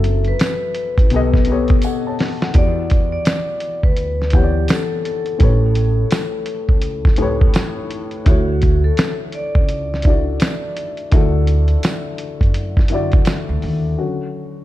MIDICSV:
0, 0, Header, 1, 5, 480
1, 0, Start_track
1, 0, Key_signature, 2, "major"
1, 0, Tempo, 714286
1, 1712, Time_signature, 4, 2, 24, 8
1, 9841, End_track
2, 0, Start_track
2, 0, Title_t, "Vibraphone"
2, 0, Program_c, 0, 11
2, 0, Note_on_c, 0, 69, 90
2, 185, Note_on_c, 0, 71, 91
2, 191, Note_off_c, 0, 69, 0
2, 1115, Note_off_c, 0, 71, 0
2, 1717, Note_on_c, 0, 74, 104
2, 2091, Note_off_c, 0, 74, 0
2, 2099, Note_on_c, 0, 74, 109
2, 2552, Note_off_c, 0, 74, 0
2, 2578, Note_on_c, 0, 71, 93
2, 2922, Note_off_c, 0, 71, 0
2, 2925, Note_on_c, 0, 67, 82
2, 3161, Note_on_c, 0, 69, 100
2, 3166, Note_off_c, 0, 67, 0
2, 3389, Note_off_c, 0, 69, 0
2, 3397, Note_on_c, 0, 69, 84
2, 5288, Note_off_c, 0, 69, 0
2, 5558, Note_on_c, 0, 66, 102
2, 5914, Note_off_c, 0, 66, 0
2, 5942, Note_on_c, 0, 69, 90
2, 6028, Note_off_c, 0, 69, 0
2, 6036, Note_on_c, 0, 69, 94
2, 6143, Note_off_c, 0, 69, 0
2, 6282, Note_on_c, 0, 74, 100
2, 8890, Note_off_c, 0, 74, 0
2, 9841, End_track
3, 0, Start_track
3, 0, Title_t, "Upright piano"
3, 0, Program_c, 1, 0
3, 0, Control_c, 1, 64, 127
3, 0, Note_on_c, 1, 54, 73
3, 0, Note_on_c, 1, 60, 70
3, 0, Note_on_c, 1, 66, 64
3, 0, Note_on_c, 1, 69, 64
3, 0, Note_on_c, 1, 76, 77
3, 491, Note_off_c, 1, 54, 0
3, 495, Note_off_c, 1, 66, 0
3, 502, Note_off_c, 1, 60, 0
3, 506, Note_off_c, 1, 76, 0
3, 520, Note_off_c, 1, 69, 0
3, 747, Note_on_c, 1, 47, 88
3, 755, Note_on_c, 1, 59, 79
3, 761, Control_c, 1, 64, 0
3, 764, Note_on_c, 1, 67, 86
3, 770, Note_on_c, 1, 69, 85
3, 779, Note_on_c, 1, 75, 104
3, 898, Control_c, 1, 64, 127
3, 952, Note_off_c, 1, 47, 0
3, 956, Note_off_c, 1, 59, 0
3, 960, Note_off_c, 1, 67, 0
3, 963, Note_off_c, 1, 69, 0
3, 968, Note_off_c, 1, 75, 0
3, 989, Note_on_c, 1, 47, 87
3, 994, Note_on_c, 1, 59, 83
3, 1006, Note_on_c, 1, 67, 75
3, 1012, Note_on_c, 1, 69, 80
3, 1020, Note_on_c, 1, 73, 87
3, 1235, Note_off_c, 1, 69, 0
3, 1240, Note_on_c, 1, 78, 64
3, 1245, Note_on_c, 1, 69, 60
3, 1246, Note_off_c, 1, 73, 0
3, 1375, Note_off_c, 1, 78, 0
3, 1377, Note_off_c, 1, 69, 0
3, 1390, Note_on_c, 1, 81, 65
3, 1391, Note_on_c, 1, 73, 53
3, 1525, Note_off_c, 1, 47, 0
3, 1527, Note_off_c, 1, 59, 0
3, 1533, Note_off_c, 1, 67, 0
3, 1612, Note_off_c, 1, 81, 0
3, 1613, Note_off_c, 1, 73, 0
3, 1627, Note_on_c, 1, 78, 65
3, 1630, Note_on_c, 1, 69, 53
3, 1703, Note_on_c, 1, 52, 72
3, 1714, Note_on_c, 1, 59, 65
3, 1718, Note_on_c, 1, 66, 66
3, 1721, Control_c, 1, 64, 0
3, 1725, Note_on_c, 1, 67, 65
3, 1733, Note_on_c, 1, 74, 75
3, 1850, Note_off_c, 1, 78, 0
3, 1852, Note_off_c, 1, 69, 0
3, 1852, Control_c, 1, 64, 127
3, 2411, Note_off_c, 1, 52, 0
3, 2417, Note_off_c, 1, 59, 0
3, 2419, Note_off_c, 1, 66, 0
3, 2423, Note_off_c, 1, 67, 0
3, 2426, Note_off_c, 1, 74, 0
3, 2906, Note_on_c, 1, 52, 70
3, 2914, Note_on_c, 1, 59, 64
3, 2919, Note_on_c, 1, 78, 65
3, 2929, Note_on_c, 1, 67, 65
3, 2937, Note_on_c, 1, 73, 60
3, 2977, Note_off_c, 1, 73, 0
3, 2982, Note_on_c, 1, 74, 81
3, 3443, Note_off_c, 1, 52, 0
3, 3447, Note_off_c, 1, 59, 0
3, 3450, Note_off_c, 1, 78, 0
3, 3454, Note_off_c, 1, 67, 0
3, 3481, Note_off_c, 1, 74, 0
3, 3619, Note_on_c, 1, 45, 68
3, 3626, Note_on_c, 1, 57, 62
3, 3636, Note_on_c, 1, 67, 65
3, 3642, Control_c, 1, 64, 0
3, 3642, Note_on_c, 1, 71, 68
3, 3650, Note_on_c, 1, 73, 80
3, 3773, Control_c, 1, 64, 127
3, 4329, Note_off_c, 1, 45, 0
3, 4333, Note_off_c, 1, 57, 0
3, 4338, Note_off_c, 1, 67, 0
3, 4341, Note_off_c, 1, 71, 0
3, 4345, Note_off_c, 1, 73, 0
3, 4824, Note_on_c, 1, 45, 88
3, 4830, Note_on_c, 1, 57, 79
3, 4836, Note_on_c, 1, 67, 77
3, 4845, Note_on_c, 1, 71, 80
3, 4854, Note_on_c, 1, 73, 96
3, 5362, Note_off_c, 1, 45, 0
3, 5365, Note_off_c, 1, 57, 0
3, 5368, Note_off_c, 1, 67, 0
3, 5372, Note_off_c, 1, 71, 0
3, 5377, Note_off_c, 1, 73, 0
3, 5543, Note_on_c, 1, 50, 74
3, 5550, Note_on_c, 1, 57, 68
3, 5556, Note_on_c, 1, 64, 67
3, 5561, Control_c, 1, 64, 0
3, 5564, Note_on_c, 1, 66, 63
3, 5573, Note_on_c, 1, 73, 79
3, 5666, Control_c, 1, 64, 127
3, 6251, Note_off_c, 1, 50, 0
3, 6255, Note_off_c, 1, 57, 0
3, 6258, Note_off_c, 1, 64, 0
3, 6262, Note_off_c, 1, 66, 0
3, 6266, Note_off_c, 1, 73, 0
3, 6747, Note_on_c, 1, 62, 69
3, 6756, Note_on_c, 1, 57, 62
3, 6764, Note_on_c, 1, 64, 64
3, 6768, Note_on_c, 1, 66, 69
3, 6777, Note_on_c, 1, 74, 80
3, 7284, Note_off_c, 1, 62, 0
3, 7288, Note_off_c, 1, 57, 0
3, 7292, Note_off_c, 1, 64, 0
3, 7294, Note_off_c, 1, 66, 0
3, 7299, Note_off_c, 1, 74, 0
3, 7466, Note_on_c, 1, 50, 80
3, 7474, Note_on_c, 1, 57, 81
3, 7482, Note_on_c, 1, 64, 75
3, 7490, Note_on_c, 1, 66, 79
3, 7498, Note_on_c, 1, 69, 88
3, 8173, Note_off_c, 1, 50, 0
3, 8177, Note_off_c, 1, 57, 0
3, 8181, Note_off_c, 1, 64, 0
3, 8185, Note_off_c, 1, 66, 0
3, 8189, Note_off_c, 1, 69, 0
3, 8667, Note_on_c, 1, 50, 80
3, 8675, Note_on_c, 1, 57, 71
3, 8681, Note_on_c, 1, 64, 70
3, 8689, Note_on_c, 1, 66, 78
3, 8697, Note_on_c, 1, 74, 93
3, 9204, Note_off_c, 1, 50, 0
3, 9207, Note_off_c, 1, 57, 0
3, 9211, Note_off_c, 1, 64, 0
3, 9214, Note_off_c, 1, 66, 0
3, 9218, Note_off_c, 1, 74, 0
3, 9398, Note_on_c, 1, 66, 71
3, 9400, Note_on_c, 1, 50, 48
3, 9402, Control_c, 1, 64, 0
3, 9407, Note_on_c, 1, 54, 42
3, 9409, Note_on_c, 1, 61, 52
3, 9536, Control_c, 1, 64, 127
3, 9841, Note_off_c, 1, 50, 0
3, 9841, Note_off_c, 1, 54, 0
3, 9841, Note_off_c, 1, 61, 0
3, 9841, Note_off_c, 1, 66, 0
3, 9841, End_track
4, 0, Start_track
4, 0, Title_t, "Upright bass"
4, 0, Program_c, 2, 32
4, 0, Note_on_c, 2, 30, 116
4, 211, Note_off_c, 2, 30, 0
4, 660, Note_on_c, 2, 33, 94
4, 762, Note_off_c, 2, 33, 0
4, 762, Note_on_c, 2, 35, 93
4, 1174, Note_off_c, 2, 35, 0
4, 1719, Note_on_c, 2, 40, 113
4, 2133, Note_off_c, 2, 40, 0
4, 2581, Note_on_c, 2, 38, 78
4, 3127, Note_off_c, 2, 38, 0
4, 3636, Note_on_c, 2, 33, 104
4, 4051, Note_off_c, 2, 33, 0
4, 4498, Note_on_c, 2, 37, 73
4, 5046, Note_off_c, 2, 37, 0
4, 5557, Note_on_c, 2, 38, 113
4, 5972, Note_off_c, 2, 38, 0
4, 6422, Note_on_c, 2, 37, 80
4, 6967, Note_off_c, 2, 37, 0
4, 7479, Note_on_c, 2, 38, 111
4, 7893, Note_off_c, 2, 38, 0
4, 8341, Note_on_c, 2, 42, 82
4, 8887, Note_off_c, 2, 42, 0
4, 9065, Note_on_c, 2, 38, 88
4, 9144, Note_off_c, 2, 38, 0
4, 9162, Note_on_c, 2, 39, 97
4, 9366, Note_off_c, 2, 39, 0
4, 9841, End_track
5, 0, Start_track
5, 0, Title_t, "Drums"
5, 27, Note_on_c, 9, 42, 64
5, 94, Note_off_c, 9, 42, 0
5, 165, Note_on_c, 9, 42, 33
5, 232, Note_off_c, 9, 42, 0
5, 265, Note_on_c, 9, 42, 89
5, 270, Note_on_c, 9, 54, 67
5, 276, Note_on_c, 9, 38, 103
5, 332, Note_off_c, 9, 42, 0
5, 337, Note_off_c, 9, 54, 0
5, 343, Note_off_c, 9, 38, 0
5, 501, Note_on_c, 9, 42, 60
5, 568, Note_off_c, 9, 42, 0
5, 656, Note_on_c, 9, 36, 88
5, 665, Note_on_c, 9, 42, 32
5, 723, Note_off_c, 9, 36, 0
5, 732, Note_off_c, 9, 42, 0
5, 741, Note_on_c, 9, 42, 70
5, 809, Note_off_c, 9, 42, 0
5, 898, Note_on_c, 9, 36, 93
5, 909, Note_on_c, 9, 38, 37
5, 965, Note_off_c, 9, 36, 0
5, 973, Note_on_c, 9, 42, 67
5, 977, Note_off_c, 9, 38, 0
5, 1040, Note_off_c, 9, 42, 0
5, 1129, Note_on_c, 9, 42, 35
5, 1143, Note_on_c, 9, 36, 99
5, 1196, Note_off_c, 9, 42, 0
5, 1210, Note_off_c, 9, 36, 0
5, 1221, Note_on_c, 9, 42, 77
5, 1231, Note_on_c, 9, 54, 65
5, 1288, Note_off_c, 9, 42, 0
5, 1298, Note_off_c, 9, 54, 0
5, 1471, Note_on_c, 9, 46, 46
5, 1482, Note_on_c, 9, 38, 80
5, 1539, Note_off_c, 9, 46, 0
5, 1549, Note_off_c, 9, 38, 0
5, 1628, Note_on_c, 9, 38, 86
5, 1695, Note_off_c, 9, 38, 0
5, 1707, Note_on_c, 9, 42, 78
5, 1713, Note_on_c, 9, 36, 114
5, 1774, Note_off_c, 9, 42, 0
5, 1780, Note_off_c, 9, 36, 0
5, 1948, Note_on_c, 9, 42, 61
5, 1959, Note_on_c, 9, 36, 87
5, 2016, Note_off_c, 9, 42, 0
5, 2026, Note_off_c, 9, 36, 0
5, 2186, Note_on_c, 9, 42, 98
5, 2189, Note_on_c, 9, 54, 68
5, 2197, Note_on_c, 9, 38, 105
5, 2254, Note_off_c, 9, 42, 0
5, 2256, Note_off_c, 9, 54, 0
5, 2265, Note_off_c, 9, 38, 0
5, 2422, Note_on_c, 9, 42, 57
5, 2489, Note_off_c, 9, 42, 0
5, 2577, Note_on_c, 9, 36, 85
5, 2644, Note_off_c, 9, 36, 0
5, 2665, Note_on_c, 9, 42, 68
5, 2732, Note_off_c, 9, 42, 0
5, 2834, Note_on_c, 9, 38, 38
5, 2892, Note_on_c, 9, 42, 68
5, 2901, Note_off_c, 9, 38, 0
5, 2912, Note_on_c, 9, 36, 94
5, 2959, Note_off_c, 9, 42, 0
5, 2979, Note_off_c, 9, 36, 0
5, 3146, Note_on_c, 9, 42, 77
5, 3150, Note_on_c, 9, 54, 66
5, 3161, Note_on_c, 9, 38, 112
5, 3213, Note_off_c, 9, 42, 0
5, 3217, Note_off_c, 9, 54, 0
5, 3228, Note_off_c, 9, 38, 0
5, 3395, Note_on_c, 9, 42, 63
5, 3463, Note_off_c, 9, 42, 0
5, 3533, Note_on_c, 9, 42, 36
5, 3600, Note_off_c, 9, 42, 0
5, 3627, Note_on_c, 9, 42, 75
5, 3632, Note_on_c, 9, 36, 121
5, 3695, Note_off_c, 9, 42, 0
5, 3699, Note_off_c, 9, 36, 0
5, 3866, Note_on_c, 9, 42, 67
5, 3933, Note_off_c, 9, 42, 0
5, 4103, Note_on_c, 9, 42, 90
5, 4109, Note_on_c, 9, 54, 66
5, 4114, Note_on_c, 9, 38, 109
5, 4171, Note_off_c, 9, 42, 0
5, 4176, Note_off_c, 9, 54, 0
5, 4182, Note_off_c, 9, 38, 0
5, 4340, Note_on_c, 9, 42, 63
5, 4407, Note_off_c, 9, 42, 0
5, 4494, Note_on_c, 9, 36, 79
5, 4561, Note_off_c, 9, 36, 0
5, 4580, Note_on_c, 9, 42, 76
5, 4647, Note_off_c, 9, 42, 0
5, 4737, Note_on_c, 9, 36, 95
5, 4753, Note_on_c, 9, 38, 38
5, 4805, Note_off_c, 9, 36, 0
5, 4814, Note_on_c, 9, 42, 74
5, 4820, Note_off_c, 9, 38, 0
5, 4881, Note_off_c, 9, 42, 0
5, 4982, Note_on_c, 9, 36, 100
5, 5049, Note_off_c, 9, 36, 0
5, 5065, Note_on_c, 9, 42, 79
5, 5072, Note_on_c, 9, 54, 67
5, 5080, Note_on_c, 9, 38, 116
5, 5132, Note_off_c, 9, 42, 0
5, 5139, Note_off_c, 9, 54, 0
5, 5147, Note_off_c, 9, 38, 0
5, 5313, Note_on_c, 9, 42, 59
5, 5380, Note_off_c, 9, 42, 0
5, 5451, Note_on_c, 9, 42, 35
5, 5518, Note_off_c, 9, 42, 0
5, 5550, Note_on_c, 9, 42, 77
5, 5553, Note_on_c, 9, 36, 109
5, 5617, Note_off_c, 9, 42, 0
5, 5620, Note_off_c, 9, 36, 0
5, 5790, Note_on_c, 9, 42, 65
5, 5799, Note_on_c, 9, 36, 93
5, 5857, Note_off_c, 9, 42, 0
5, 5866, Note_off_c, 9, 36, 0
5, 6029, Note_on_c, 9, 42, 94
5, 6034, Note_on_c, 9, 54, 65
5, 6040, Note_on_c, 9, 38, 109
5, 6097, Note_off_c, 9, 42, 0
5, 6102, Note_off_c, 9, 54, 0
5, 6108, Note_off_c, 9, 38, 0
5, 6266, Note_on_c, 9, 42, 57
5, 6333, Note_off_c, 9, 42, 0
5, 6418, Note_on_c, 9, 36, 90
5, 6485, Note_off_c, 9, 36, 0
5, 6509, Note_on_c, 9, 42, 64
5, 6576, Note_off_c, 9, 42, 0
5, 6679, Note_on_c, 9, 38, 37
5, 6736, Note_on_c, 9, 42, 72
5, 6746, Note_off_c, 9, 38, 0
5, 6754, Note_on_c, 9, 36, 99
5, 6803, Note_off_c, 9, 42, 0
5, 6821, Note_off_c, 9, 36, 0
5, 6988, Note_on_c, 9, 42, 80
5, 6992, Note_on_c, 9, 54, 64
5, 7003, Note_on_c, 9, 38, 120
5, 7055, Note_off_c, 9, 42, 0
5, 7059, Note_off_c, 9, 54, 0
5, 7070, Note_off_c, 9, 38, 0
5, 7235, Note_on_c, 9, 42, 65
5, 7302, Note_off_c, 9, 42, 0
5, 7374, Note_on_c, 9, 42, 36
5, 7441, Note_off_c, 9, 42, 0
5, 7470, Note_on_c, 9, 42, 74
5, 7475, Note_on_c, 9, 36, 118
5, 7537, Note_off_c, 9, 42, 0
5, 7542, Note_off_c, 9, 36, 0
5, 7710, Note_on_c, 9, 42, 69
5, 7777, Note_off_c, 9, 42, 0
5, 7848, Note_on_c, 9, 42, 35
5, 7915, Note_off_c, 9, 42, 0
5, 7950, Note_on_c, 9, 42, 97
5, 7950, Note_on_c, 9, 54, 67
5, 7961, Note_on_c, 9, 38, 111
5, 8017, Note_off_c, 9, 42, 0
5, 8017, Note_off_c, 9, 54, 0
5, 8029, Note_off_c, 9, 38, 0
5, 8187, Note_on_c, 9, 42, 61
5, 8254, Note_off_c, 9, 42, 0
5, 8338, Note_on_c, 9, 36, 84
5, 8351, Note_on_c, 9, 42, 32
5, 8405, Note_off_c, 9, 36, 0
5, 8419, Note_off_c, 9, 42, 0
5, 8429, Note_on_c, 9, 42, 73
5, 8496, Note_off_c, 9, 42, 0
5, 8581, Note_on_c, 9, 36, 89
5, 8596, Note_on_c, 9, 38, 37
5, 8648, Note_off_c, 9, 36, 0
5, 8657, Note_on_c, 9, 42, 73
5, 8663, Note_off_c, 9, 38, 0
5, 8725, Note_off_c, 9, 42, 0
5, 8814, Note_on_c, 9, 42, 36
5, 8825, Note_on_c, 9, 36, 98
5, 8882, Note_off_c, 9, 42, 0
5, 8892, Note_off_c, 9, 36, 0
5, 8904, Note_on_c, 9, 42, 76
5, 8908, Note_on_c, 9, 54, 69
5, 8920, Note_on_c, 9, 38, 109
5, 8972, Note_off_c, 9, 42, 0
5, 8976, Note_off_c, 9, 54, 0
5, 8987, Note_off_c, 9, 38, 0
5, 9155, Note_on_c, 9, 46, 41
5, 9222, Note_off_c, 9, 46, 0
5, 9841, End_track
0, 0, End_of_file